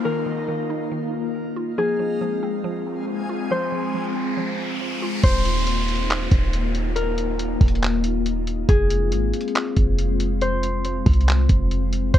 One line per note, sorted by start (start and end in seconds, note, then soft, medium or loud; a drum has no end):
0.00 1.75 A#3 medium
0.00 0.27 D#4 medium
0.00 1.74 D#4 medium
0.00 1.75 D#4 medium
0.00 1.13 F4 medium
0.00 5.19 F4 medium
0.00 1.74 A#4 medium
0.00 0.31 C5 loud
0.00 5.19 F5 medium
0.00 downlifter medium
0.05 0.25 D#3 loud
0.05 2.17 A#4 medium
0.26 0.47 D#3 medium
0.48 0.90 D#3 medium
0.70 1.78 D#4 medium
0.92 1.78 D#3 medium
1.56 1.78 F4 medium
1.78 1.98 F3 loud
1.78 5.20 G#3 medium
1.78 5.20 C4 medium
1.78 5.20 G#4 medium
1.78 4.05 G#4 medium
1.78 riser medium
1.99 2.20 F3 medium
2.21 2.63 F3 medium
2.43 3.72 C4 medium
2.64 3.50 F3 loud
3.29 4.59 F4 medium
3.51 3.71 F3 loud
3.51 5.23 C5 medium
3.72 3.93 F3 medium
3.94 4.36 F3 medium
4.15 5.23 C4 medium
4.37 5.23 F3 medium
5.02 5.24 F4 medium
5.24 6.27 D#1 loud
5.24 8.65 A#3 medium
5.24 8.65 D#4 medium
5.24 12.10 F4 medium
5.24 7.21 C5 loud
5.24 kick loud
5.24 closed hi-hat medium
5.24 downlifter medium
5.45 closed hi-hat medium
5.67 closed hi-hat medium
5.88 closed hi-hat medium
5.96 closed hi-hat soft
6.03 closed hi-hat soft
6.10 clap loud
6.10 closed hi-hat medium
6.31 7.57 D#1 loud
6.31 kick medium
6.31 closed hi-hat medium
6.53 closed hi-hat medium
6.75 closed hi-hat medium
6.96 9.08 A#4 medium
6.96 closed hi-hat medium
7.18 closed hi-hat medium
7.39 closed hi-hat medium
7.61 8.65 D#1 loud
7.61 kick medium
7.61 closed hi-hat medium
7.61 open hi-hat soft
7.68 closed hi-hat soft
7.75 closed hi-hat soft
7.82 clap loud
7.82 closed hi-hat medium
8.04 closed hi-hat medium
8.26 closed hi-hat medium
8.47 closed hi-hat medium
8.69 9.14 F1 loud
8.69 12.11 G#3 medium
8.69 12.11 C4 medium
8.69 10.96 G#4 loud
8.69 kick loud
8.69 closed hi-hat medium
8.90 closed hi-hat medium
9.12 9.32 G#1 loud
9.12 closed hi-hat medium
9.34 closed hi-hat medium
9.41 closed hi-hat soft
9.48 closed hi-hat soft
9.55 clap loud
9.55 closed hi-hat medium
9.76 11.02 F1 loud
9.76 kick medium
9.76 closed hi-hat medium
9.99 closed hi-hat medium
10.20 closed hi-hat medium
10.41 12.13 C5 medium
10.41 closed hi-hat medium
10.63 closed hi-hat medium
10.85 closed hi-hat medium
11.06 11.48 C2 loud
11.06 kick medium
11.06 closed hi-hat medium
11.06 open hi-hat soft
11.13 closed hi-hat soft
11.21 closed hi-hat soft
11.28 clap loud
11.28 closed hi-hat medium
11.49 12.12 F1 medium
11.49 kick medium
11.49 closed hi-hat medium
11.71 closed hi-hat medium
11.93 closed hi-hat medium
12.14 12.19 D#1 loud
12.14 12.19 C5 loud
12.14 kick loud
12.14 closed hi-hat medium